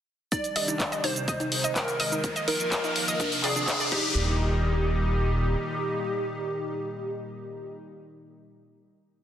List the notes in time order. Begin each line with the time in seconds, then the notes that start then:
0.32 C3 D#3 G3 D4 D#4 D5, kick, closed hi-hat, riser, cabasa
0.44 closed hi-hat, cabasa
0.56 C2 D#5, open hi-hat
0.68 D#4, closed hi-hat, cabasa
0.80 kick, clap, closed hi-hat, cabasa
0.92 D#5, closed hi-hat, cabasa
1.04 C2 D#4 C5, open hi-hat
1.16 closed hi-hat, cabasa
1.28 G#3 D#4 D#5, kick, closed hi-hat, cabasa
1.40 D#4, closed hi-hat, cabasa
1.52 G#1, open hi-hat
1.64 D#5, cabasa
1.76 D#4 A#4, kick, clap, closed hi-hat, cabasa
1.88 closed hi-hat, cabasa
2.00 G#1 D#5, open hi-hat
2.12 D#4, closed hi-hat, cabasa
2.24 D#3 F3 A#3 F4, kick, closed hi-hat, cabasa
2.36 D#5, closed hi-hat, cabasa
2.48 D#1 D#4 A#4, open hi-hat
2.60 closed hi-hat, cabasa
2.72 D#5, kick, clap, closed hi-hat, cabasa
2.84 D#4, closed hi-hat, cabasa
2.96 D#1, open hi-hat
3.08 D#5, cabasa
3.20 C3 D4, kick, closed hi-hat, cabasa
3.32 open hi-hat, cabasa
3.44 A#1 G#4 D5, clap, open hi-hat
3.56 D4, closed hi-hat, cabasa
3.68 kick, clap, closed hi-hat, cabasa
3.80 D5, closed hi-hat, cabasa
3.92 D#1 A#2 D#3 G3 D#4 G4, kick, crash